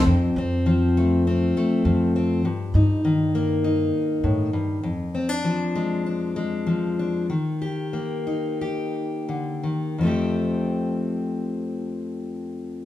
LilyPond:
<<
  \new Staff \with { instrumentName = "Steel-string acoustic guitar" } { \time 4/4 \key f \mixolydian \tempo 4 = 98 << { c'8 c'4 a8 c'8 a4 c'8 | r8 ees'4 bes8 ees'2 | r8 c'16 d'8. aes8 d'8 aes4 d'8 | r8 g'4 ees'8 g'2 |
<f a c' g'>1 | } \\ { f,4 f2 f4 | g,4 ees2 a,8 g,8 | f,4 f2 f4 | ees4 bes2 d8 ees8 |
f,1 | } >> }
  \new Staff \with { instrumentName = "Upright bass" } { \clef bass \time 4/4 \key f \mixolydian f,8 f,2 r8 f,4 | g,8 g,2 r8 g,4 | r1 | r1 |
r1 | }
>>